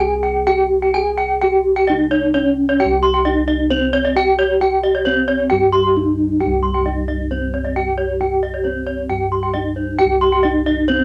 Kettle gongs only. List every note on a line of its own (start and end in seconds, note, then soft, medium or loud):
0.00 1.87 C2 medium
0.00 0.43 C4 medium
0.47 0.55 C#4 soft
0.94 2.30 G#4 soft
1.42 1.50 C#4 soft
1.89 3.21 C3 soft
2.36 2.43 C#4 soft
2.80 4.11 G4 medium
2.85 5.48 C2 medium
3.26 3.34 C#4 soft
4.16 4.23 C#4 soft
4.61 5.91 G4 soft
5.06 5.14 C#4 soft
5.51 6.81 G2 medium
5.97 6.04 C#4 soft
6.41 7.71 G4 medium
6.45 9.09 C2 medium
6.86 6.93 C#4 soft
7.76 7.84 C#4 soft
8.20 9.51 G4 medium
8.65 8.73 C#4 soft
9.09 10.40 G2 soft
9.55 9.63 C#4 soft
9.99 11.04 G4 medium
10.04 11.04 C2 medium
10.45 10.53 C#4 soft